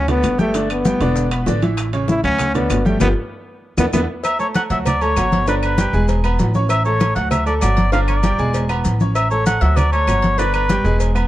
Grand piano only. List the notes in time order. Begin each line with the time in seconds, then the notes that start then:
0.08 D3 D4 D5
0.38 G3 G4 G5
0.54 D3 D4 D5
0.85 G3 G4 G5
1.01 D3 D4 D5
1.32 B3 B4 B5
1.47 D3 D4 D5
1.62 E3 E4 E5
1.93 C#3 C#4 C#5
2.23 F#3 F#4 F#5
2.55 D3 D4 D5
2.85 G3 G4 G5
3.00 D4 F4 G4
3.78 B3 D4 E4
3.94 B3 D4 E4
4.39 A3 A4 A5
4.71 F#3 F#4 F#5
5.01 A3 A4 A5
5.17 F#3 F#4 F#5
5.48 D3 D4 D5
5.78 G3 G4 G5
5.94 G#3 G#4 G#5
6.25 B3 B4 B5
6.55 C#4 C#5 C#6
6.86 A3 A4 A5
7.16 F#3 F#4 F#5
7.46 A3 A4 A5
7.62 F#3 F#4 F#5
7.92 D3 D4 D5
8.24 G3 G4 G5
8.39 G#3 G#4 G#5
8.70 B3 B4 B5
9.01 C#4 C#5 C#6
9.31 A3 A4 A5
9.62 F#3 F#4 F#5
9.93 A3 A4 A5
10.08 F#3 F#4 F#5
10.39 D3 D4 D5
10.69 G3 G4 G5
10.84 G#3 G#4 G#5
11.15 B3 B4 B5